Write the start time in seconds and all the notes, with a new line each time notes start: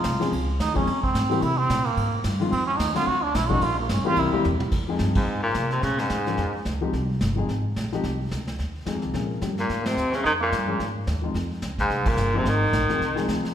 Already playing: F4
0.04 C2, kick, snare, hi-hat pedal, ride
0.20 F3 G#3 C4 C#4 G#4, snare, ride
0.32 C#2, kick, ride
0.60 D#2 D#4, kick, snare, hi-hat pedal, ride
0.74 F3 G#3 C4 C#4 G#4, kick, ride
0.87 F2, kick, ride
1.03 C4, kick
1.14 G#2, kick, snare, hi-hat pedal, ride
1.29 E3 G3 A#3 C4 G4, ride
1.42 C3 E4, kick, ride
1.58 C4
1.70 A#2, kick, snare, hi-hat pedal, ride
1.86 A#3, ride
1.97 G#2, kick, ride
2.24 G2, kick, snare, hi-hat pedal, ride
2.40 D#3 F3 G#3 C4 F4, ride
2.52 F2 C4, kick, ride
2.67 C#4
2.78 D#2 D#4, kick, snare, hi-hat pedal, ride
2.95 D3 F#3 A3 C4 F4 F#4, snare, ride
3.07 D2 F#4, kick
3.23 D4
3.34 B1 E4, kick, snare, hi-hat pedal, ride
3.49 F3 G3 A#3 C#4 D#4 F#4, kick
3.61 A#1 F4, kick, ride
3.80 A#3
3.89 G1 C#4, kick, snare, hi-hat pedal, ride
4.04 E3 G3 A#3 C4 F4 G4, muted upright bass stroke
4.16 C2 E4, kick, ride
4.33 E3 G3 A#3 C4 G4, muted upright bass stroke
4.44 E2, hi-hat pedal, mid tom
4.60 mid tom
4.71 F2, brush sweep, kick, snare, crash
4.88 F3 G#3 C4 D#4 G#4
4.99 G2, kick, snare, hi-hat pedal
5.15 G#2 G#3, kick, crash
5.27 G#2, brush sweep
5.43 A#2 A#3
5.54 C3, kick, snare, hi-hat pedal
5.70 C3 C4, snare
5.81 A#2 C#3 C#4, brush sweep, kick, snare
5.98 G#2 G#3, snare
6.09 G#2, kick, snare, hi-hat pedal
6.26 F3 G#3 A#3 C#4 G#4, snare
6.37 F2, brush sweep, kick, snare
6.53 muted upright bass stroke
6.65 C#2, kick, snare, hi-hat pedal
6.81 F3 G#3 C4 D#4 G4
6.93 C2, brush sweep, kick, snare
7.21 G1, kick, snare, hi-hat pedal
7.36 F3 G#3 C4 D#4 G#4
7.49 G#1, brush sweep, kick, snare
7.76 A#1, kick, snare, hi-hat pedal
7.92 F3 G#3 C4 D#4 G4, snare
8.03 C2, brush sweep, kick, snare
8.31 C#2, kick, snare, hi-hat pedal
8.47 snare
8.59 D#2, brush sweep, kick, snare
8.85 F2 F3 G#3 C4 D#4 G#4, kick, snare, hi-hat pedal
8.96 D#2
9.02 C2, snare
9.13 A#2 F3 G#3 A#3 C#4 G#4, brush sweep, kick, snare
9.41 G2 F3 G#3 A#3 C#4 G4, kick, snare, hi-hat pedal
9.58 A#2 A#3, snare
9.69 G#2, brush sweep, kick, snare
9.86 C3 C4, snare, ride
9.96 D#2, hi-hat pedal
10.12 C#3 C#4, snare
10.24 F2 D#3 D#4, brush sweep, kick, snare
10.41 A#2 A#3
10.52 G2, kick, snare, hi-hat pedal
10.67 F3 G#3 A#3 C#4 G#4
10.80 G#2, brush sweep, kick, snare
11.07 D#2, kick, snare, hi-hat pedal
11.22 F3 G#3 C4 D#4 F4
11.34 F2, brush sweep, kick, snare
11.62 C#2, kick, snare, hi-hat pedal
11.78 G#2 G#3, kick, snare
11.90 C2, brush sweep, kick, snare
12.05 A#2 A#3, kick, crash
12.17 G1, hi-hat pedal
12.34 C3 F3 G#3 C4 D#4 G#4
12.45 G#1 D#3 D#4, brush sweep, kick, snare
12.73 A#1, kick, snare, hi-hat pedal
12.82 G#1
12.89 F1 F3 G#3 C4 D#4 G#4, snare
13.01 C2, brush sweep, kick, snare
13.15 F3 G#3 C4 D#4 G#4, snare
13.28 D#2, kick, snare, hi-hat pedal
13.45 snare